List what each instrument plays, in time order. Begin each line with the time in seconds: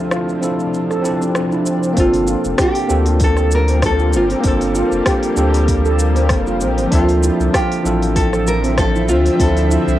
Already playing: ambient pad D2 C3 F3 D4, tine electric piano F3 C4 D4 E4 A4
0.11 steel pan F4, cross-stick, shaker
0.29 shaker
0.40 tine electric piano F3 C4 D4 E4 A4, steel pan F4, shaker
0.60 shaker
0.74 shaker
0.90 steel pan A4, cross-stick, shaker
1.01 tine electric piano F3 C4 D4 E4 A4, shaker
1.21 steel pan C4, shaker
1.35 cross-stick, shaker
1.52 steel pan E4, shaker
1.65 steel pan C4, shaker
1.82 steel pan C4, shaker
1.93 sub bass G1, tine electric piano A#3 C4 D4, steel pan C4, kick, open hi-hat, shaker
1.97 ambient pad F3 G3 A#3, tine electric piano F4 A4, nylon-string guitar F4
2.13 open hi-hat, shaker
2.27 steel pan F4, shaker
2.44 sub bass F1, shaker
2.58 steel pan G4, nylon-string guitar G4, kick, cross-stick, open hi-hat, shaker
2.75 open hi-hat, shaker
2.87 sub bass D2, tine electric piano A#3 C4 D4 F4, steel pan G4, shaker
2.92 tine electric piano A4
3.06 nylon-string guitar F4, open hi-hat, shaker
3.20 nylon-string guitar A4, kick, open hi-hat, shaker
3.37 steel pan A4, cross-stick, shaker
3.51 nylon-string guitar A#4, shaker
3.68 steel pan C4, open hi-hat, shaker
3.82 nylon-string guitar A4, kick, cross-stick, open hi-hat, shaker
3.99 steel pan F4, shaker
4.13 sub bass G1, steel pan C4, nylon-string guitar F4, shaker
4.30 steel pan C4, open hi-hat, shaker
4.40 sub bass G1, tine electric piano A#3 C4 D4, steel pan C4, open hi-hat, shaker
4.44 tine electric piano F4 A4, nylon-string guitar A4, kick
4.61 open hi-hat, shaker
4.75 steel pan F4, shaker
4.92 sub bass F1, shaker
5.06 steel pan G4, kick, cross-stick, open hi-hat, shaker
5.23 open hi-hat, shaker
5.35 sub bass D2, tine electric piano A#3 C4 D4 F4 A4, steel pan G4, shaker
5.54 open hi-hat, shaker
5.68 kick, open hi-hat, shaker
5.85 steel pan A4, shaker
5.99 shaker
6.16 steel pan C4, open hi-hat, shaker
6.29 sub bass F1, kick, cross-stick, open hi-hat, shaker
6.47 steel pan F4, shaker
6.61 sub bass A#1, steel pan C4, shaker
6.78 sub bass G1, steel pan C4, open hi-hat, shaker
6.87 tine electric piano F3 C4 D4
6.91 sub bass D2, ambient pad D3 C4 E5, steel pan C4, nylon-string guitar F4, tine electric piano A4 E5, kick, open hi-hat, shaker
7.09 open hi-hat, shaker
7.23 steel pan E4, shaker
7.40 sub bass C2, shaker
7.53 steel pan F4, nylon-string guitar G4, kick, cross-stick, open hi-hat, shaker
7.72 open hi-hat, shaker
7.83 sub bass A1, tine electric piano F3 C4 D4 E4 A4, steel pan F4, shaker
8.02 open hi-hat, shaker
8.16 nylon-string guitar A4, kick, open hi-hat, shaker
8.33 steel pan A4, cross-stick, shaker
8.47 nylon-string guitar A#4, shaker
8.64 steel pan C4, open hi-hat, shaker
8.78 nylon-string guitar A4, kick, cross-stick, open hi-hat, shaker
8.95 steel pan E4, shaker
9.08 sub bass D2, steel pan C4, nylon-string guitar F4, shaker
9.26 steel pan C4, open hi-hat, shaker
9.36 sub bass D2, tine electric piano F3 C4 D4, kick, open hi-hat
9.40 steel pan C4, tine electric piano E4 A4, nylon-string guitar A4, shaker
9.57 open hi-hat, shaker
9.71 steel pan E4, shaker
9.87 sub bass C2, shaker